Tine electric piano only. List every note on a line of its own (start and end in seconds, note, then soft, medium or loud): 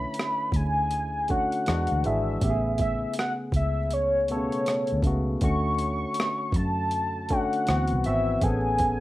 0.00 0.58 D3 medium
0.00 0.58 A3 medium
0.00 0.59 C#4 medium
0.00 0.62 E4 medium
0.00 1.69 C#5 soft
1.29 1.66 D3 medium
1.29 1.67 A3 medium
1.29 1.67 C#4 medium
1.29 1.68 F#4 medium
1.67 1.98 E3 medium
1.67 1.99 G#3 medium
1.67 1.99 D4 medium
1.67 2.00 F#4 medium
2.04 2.35 E3 medium
2.04 2.36 G#3 medium
2.04 2.36 D4 medium
2.04 2.37 G#4 medium
2.41 3.57 C#3 medium
2.41 3.58 A3 medium
2.41 3.58 B3 medium
2.41 2.51 G4 medium
2.50 3.62 G#4 medium
4.29 4.37 B2 medium
4.29 4.92 A3 medium
4.29 4.92 B3 medium
4.29 4.92 A4 medium
4.36 4.94 C#3 medium
5.04 5.35 C#3 medium
5.04 5.35 A3 soft
5.04 5.36 B3 soft
5.04 5.36 F#4 medium
5.41 6.58 D3 medium
5.41 6.58 A3 medium
5.41 6.58 C#4 medium
5.41 6.59 F#4 medium
7.30 7.67 D3 medium
7.30 7.67 A3 medium
7.30 7.68 C#4 medium
7.30 7.68 F#4 medium
7.68 7.99 E3 medium
7.68 7.99 B3 medium
7.68 8.00 C4 medium
7.68 8.00 F#4 medium
8.05 8.36 E3 medium
8.05 8.36 B3 medium
8.05 8.36 C4 medium
8.05 8.37 F#4 medium
8.43 9.00 B3 medium
8.43 8.51 C4 soft
8.43 9.00 G#4 medium
8.43 9.00 A4 medium
8.50 9.00 C#4 medium